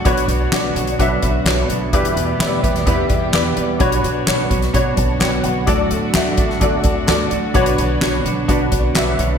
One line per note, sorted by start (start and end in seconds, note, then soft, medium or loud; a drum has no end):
0.00 1.89 F#3 medium
0.00 3.76 A3 medium
0.00 1.89 F#4 medium
0.05 0.25 B1 medium
0.05 0.29 B2 medium
0.05 1.91 D3 medium
0.05 0.29 F#3 medium
0.05 5.64 B3 medium
0.05 0.30 B3 medium
0.05 0.39 D4 loud
0.05 0.29 D4 medium
0.05 0.39 F#4 medium
0.05 0.29 F#4 medium
0.05 0.40 B4 medium
0.05 0.40 C#5 loud
0.05 0.28 C#5 medium
0.05 kick loud
0.05 closed hi-hat medium
0.17 closed hi-hat medium
0.28 0.48 B1 loud
0.28 0.52 B3 soft
0.28 0.52 D4 medium
0.28 0.53 F#4 medium
0.28 0.53 C#5 medium
0.28 closed hi-hat medium
0.52 0.71 B1 medium
0.52 0.76 B3 medium
0.52 0.86 D4 medium
0.52 0.77 D4 medium
0.52 0.86 F#4 medium
0.52 0.76 F#4 medium
0.52 0.87 B4 medium
0.52 0.75 C#5 medium
0.52 0.87 D5 medium
0.52 snare loud
0.52 clap medium
0.52 closed hi-hat medium
0.76 0.95 B1 medium
0.76 0.99 B3 soft
0.76 0.99 D4 medium
0.76 0.99 F#4 medium
0.76 1.00 C#5 medium
0.76 closed hi-hat medium
0.87 closed hi-hat soft
0.99 1.19 B1 loud
0.99 1.23 B2 medium
0.99 1.23 F#3 medium
0.99 1.23 B3 medium
0.99 1.33 D4 medium
0.99 1.23 D4 medium
0.99 1.34 F#4 medium
0.99 1.22 F#4 loud
0.99 1.34 B4 medium
0.99 1.21 C#5 medium
0.99 1.34 E5 medium
0.99 kick medium
0.99 closed hi-hat medium
1.22 1.42 B1 loud
1.22 1.45 B3 soft
1.22 1.46 D4 soft
1.22 1.46 F#4 medium
1.22 1.46 C#5 medium
1.22 kick medium
1.22 closed hi-hat medium
1.45 1.65 B1 medium
1.45 1.70 B3 medium
1.45 1.80 D4 medium
1.45 1.70 D4 medium
1.45 1.80 F#4 medium
1.45 1.69 F#4 medium
1.45 1.80 B4 medium
1.45 1.81 C#5 medium
1.45 1.68 C#5 medium
1.45 snare loud
1.45 clap medium
1.45 closed hi-hat medium
1.69 1.88 B1 loud
1.69 1.93 B3 soft
1.69 1.94 D4 medium
1.69 1.93 F#4 soft
1.69 1.93 C#5 medium
1.69 closed hi-hat medium
1.93 2.12 E2 medium
1.93 2.60 B2 medium
1.93 2.17 D3 medium
1.93 2.16 E3 medium
1.93 3.79 E3 medium
1.93 3.79 G3 medium
1.93 2.17 G3 medium
1.93 2.16 B3 medium
1.93 2.27 E4 medium
1.93 2.27 G4 medium
1.93 3.79 G4 medium
1.93 2.27 B4 medium
1.93 2.15 B4 medium
1.93 2.28 D5 loud
1.93 kick medium
1.93 closed hi-hat medium
2.05 closed hi-hat medium
2.16 2.35 E2 medium
2.16 2.39 G3 soft
2.16 2.40 B3 medium
2.16 2.40 B4 medium
2.16 closed hi-hat medium
2.39 2.59 E2 medium
2.39 2.63 D3 medium
2.39 2.63 G3 medium
2.39 2.63 B3 medium
2.39 2.74 E4 medium
2.39 2.74 G4 medium
2.39 2.74 B4 medium
2.39 2.61 B4 medium
2.39 2.46 C#5 medium
2.39 snare loud
2.39 clap medium
2.39 closed hi-hat medium
2.46 2.77 D5 medium
2.63 2.83 E2 loud
2.63 2.86 G3 medium
2.63 2.86 B3 medium
2.63 2.86 B4 medium
2.63 kick loud
2.63 closed hi-hat medium
2.76 snare soft
2.76 closed hi-hat medium
2.86 3.06 E2 medium
2.86 3.10 D3 medium
2.86 3.10 E3 medium
2.86 3.10 G3 medium
2.86 3.09 B3 medium
2.86 3.20 E4 medium
2.86 3.21 G4 medium
2.86 3.21 B4 medium
2.86 3.08 B4 loud
2.86 3.21 D5 medium
2.86 kick medium
2.86 closed hi-hat medium
3.09 3.29 E2 medium
3.09 3.32 G3 soft
3.09 3.33 B3 medium
3.09 3.33 B4 medium
3.09 kick medium
3.09 closed hi-hat medium
3.33 3.52 E2 medium
3.33 3.57 D3 medium
3.33 3.57 G3 medium
3.33 3.57 B3 medium
3.33 3.67 E4 medium
3.33 3.68 G4 medium
3.33 3.68 B4 medium
3.33 3.55 B4 medium
3.33 3.68 D5 medium
3.33 snare loud
3.33 clap medium
3.33 closed hi-hat medium
3.57 3.76 E2 medium
3.57 3.80 G3 soft
3.57 3.79 B3 medium
3.57 3.80 B4 medium
3.57 closed hi-hat medium
3.79 4.00 B1 loud
3.79 4.03 B2 medium
3.79 9.38 D3 medium
3.79 4.03 F#3 medium
3.79 7.52 F#3 medium
3.79 4.04 B3 medium
3.79 4.14 D4 loud
3.79 4.04 D4 medium
3.79 4.14 F#4 medium
3.79 4.03 F#4 medium
3.79 9.38 F#4 medium
3.79 4.14 B4 medium
3.79 5.66 C#5 medium
3.79 4.15 C#5 loud
3.79 4.02 C#5 medium
3.79 kick loud
3.79 closed hi-hat medium
3.92 closed hi-hat medium
4.03 4.23 B1 medium
4.03 4.25 B3 soft
4.03 4.26 D4 soft
4.03 4.27 F#4 medium
4.03 4.27 C#5 medium
4.03 closed hi-hat medium
4.26 4.46 B1 loud
4.26 4.50 B3 medium
4.26 4.61 D4 medium
4.26 4.50 D4 medium
4.26 4.61 F#4 medium
4.26 4.50 F#4 medium
4.26 4.61 B4 medium
4.26 4.61 C#5 medium
4.26 4.49 C#5 medium
4.26 snare loud
4.26 clap medium
4.26 closed hi-hat medium
4.50 4.70 B1 loud
4.50 4.72 B3 soft
4.50 4.73 D4 soft
4.50 4.73 F#4 medium
4.50 4.73 C#5 medium
4.50 kick medium
4.50 closed hi-hat medium
4.62 snare soft
4.62 closed hi-hat soft
4.73 4.93 B1 medium
4.73 4.97 B2 medium
4.73 4.97 F#3 medium
4.73 4.97 B3 medium
4.73 5.08 D4 medium
4.73 4.97 D4 medium
4.73 5.08 F#4 medium
4.73 4.96 F#4 loud
4.73 5.08 B4 medium
4.73 5.08 C#5 medium
4.73 4.95 C#5 medium
4.73 kick medium
4.73 closed hi-hat medium
4.96 5.16 B1 medium
4.96 5.19 B3 soft
4.96 5.20 D4 soft
4.96 5.21 F#4 medium
4.96 5.20 C#5 medium
4.96 5.19 A5 medium
4.96 kick medium
4.96 closed hi-hat medium
5.20 5.40 B1 medium
5.20 5.44 B3 medium
5.20 5.54 D4 medium
5.20 5.44 D4 medium
5.20 5.55 F#4 medium
5.20 5.44 F#4 medium
5.20 5.55 B4 medium
5.20 5.55 C#5 medium
5.20 5.42 C#5 medium
5.20 5.42 G5 medium
5.20 snare loud
5.20 clap medium
5.20 closed hi-hat medium
5.43 5.63 B1 medium
5.43 5.68 B3 soft
5.43 5.67 D4 soft
5.43 5.68 F#4 medium
5.43 5.67 C#5 medium
5.43 5.66 F#5 medium
5.43 closed hi-hat medium
5.67 5.87 D2 loud
5.67 6.34 A2 medium
5.67 5.91 D3 medium
5.67 5.91 F#3 medium
5.67 7.53 A3 medium
5.67 5.91 A3 medium
5.67 6.01 D4 medium
5.67 5.91 D4 medium
5.67 6.01 F#4 medium
5.67 5.90 F#4 medium
5.67 6.02 A4 loud
5.67 7.53 A4 medium
5.67 6.02 D5 loud
5.67 5.90 D5 medium
5.67 kick loud
5.67 closed hi-hat medium
5.91 6.10 D2 medium
5.91 6.13 A3 soft
5.91 6.14 D4 soft
5.91 6.14 F#4 medium
5.91 6.14 D5 medium
5.91 closed hi-hat medium
6.14 6.34 D2 loud
6.14 6.38 A3 medium
6.14 6.48 D4 medium
6.14 6.38 D4 medium
6.14 6.48 F#4 medium
6.14 6.37 F#4 medium
6.14 6.49 A4 medium
6.14 6.37 D5 medium
6.14 6.49 E5 medium
6.14 snare loud
6.14 clap medium
6.14 closed hi-hat medium
6.37 6.57 D2 medium
6.37 6.61 A3 soft
6.37 6.61 D4 medium
6.37 6.61 F#4 medium
6.37 6.61 D5 medium
6.37 kick loud
6.37 closed hi-hat medium
6.50 snare soft
6.60 6.81 D2 medium
6.60 6.85 D3 medium
6.60 6.85 F#3 medium
6.60 6.85 A3 medium
6.60 6.95 D4 medium
6.60 6.85 D4 medium
6.60 6.95 F#4 medium
6.60 6.84 F#4 medium
6.60 6.95 A4 medium
6.60 6.96 D5 medium
6.60 6.83 D5 loud
6.60 kick medium
6.60 closed hi-hat medium
6.84 7.04 D2 loud
6.84 7.06 A3 soft
6.84 7.07 D4 medium
6.84 7.08 F#4 medium
6.84 7.08 D5 medium
6.84 kick medium
6.84 closed hi-hat medium
7.06 7.27 D2 medium
7.06 7.31 A3 medium
7.06 7.41 D4 medium
7.06 7.30 D4 medium
7.06 7.42 F#4 medium
7.06 7.30 F#4 medium
7.06 7.42 A4 medium
7.06 7.42 D5 medium
7.06 7.29 D5 medium
7.06 snare loud
7.06 clap medium
7.06 closed hi-hat medium
7.30 7.51 D2 medium
7.30 7.54 A3 soft
7.30 7.54 D4 soft
7.30 7.54 F#4 soft
7.30 7.54 D5 medium
7.30 closed hi-hat medium
7.54 7.74 B1 medium
7.54 7.78 B2 medium
7.54 7.78 F#3 medium
7.54 9.38 F#3 medium
7.54 7.78 B3 medium
7.54 9.38 B3 medium
7.54 7.89 D4 loud
7.54 7.77 D4 medium
7.54 9.38 D4 medium
7.54 7.89 F#4 medium
7.54 7.77 F#4 medium
7.54 7.89 B4 loud
7.54 7.76 C#5 medium
7.54 7.89 C#5 loud
7.54 kick loud
7.54 closed hi-hat medium
7.66 closed hi-hat medium
7.77 7.98 B1 loud
7.77 7.99 B3 soft
7.77 8.00 D4 medium
7.77 8.01 F#4 medium
7.77 8.01 C#5 medium
7.77 closed hi-hat medium
8.00 8.21 B1 loud
8.00 8.25 B3 medium
8.00 8.36 D4 medium
8.00 8.24 D4 medium
8.00 8.36 F#4 medium
8.00 8.24 F#4 medium
8.00 8.36 B4 medium
8.00 8.36 C#5 medium
8.00 8.23 C#5 medium
8.00 snare loud
8.00 clap medium
8.00 closed hi-hat medium
8.24 8.44 B1 loud
8.24 8.47 B3 soft
8.24 8.48 D4 medium
8.24 8.48 F#4 medium
8.24 8.48 C#5 medium
8.24 closed hi-hat medium
8.48 8.68 B1 medium
8.48 8.72 B2 medium
8.48 8.72 F#3 medium
8.48 8.72 B3 medium
8.48 8.83 D4 medium
8.48 8.71 D4 loud
8.48 8.83 F#4 medium
8.48 8.71 F#4 medium
8.48 8.83 B4 medium
8.48 8.70 C#5 medium
8.48 8.83 D5 medium
8.48 kick medium
8.48 closed hi-hat medium
8.71 8.91 B1 loud
8.71 8.93 B3 medium
8.71 8.94 D4 medium
8.71 8.95 F#4 medium
8.71 8.95 C#5 medium
8.71 kick medium
8.71 closed hi-hat medium
8.94 9.15 B1 medium
8.94 9.18 B3 medium
8.94 9.30 D4 medium
8.94 9.18 D4 medium
8.94 9.30 F#4 medium
8.94 9.18 F#4 medium
8.94 9.30 B4 medium
8.94 9.17 C#5 medium
8.94 9.30 E5 medium
8.94 snare loud
8.94 clap medium
8.94 closed hi-hat medium
9.18 9.38 B1 loud
9.18 9.38 B3 soft
9.18 9.38 D4 medium
9.18 9.38 F#4 medium
9.18 9.38 C#5 medium
9.18 closed hi-hat medium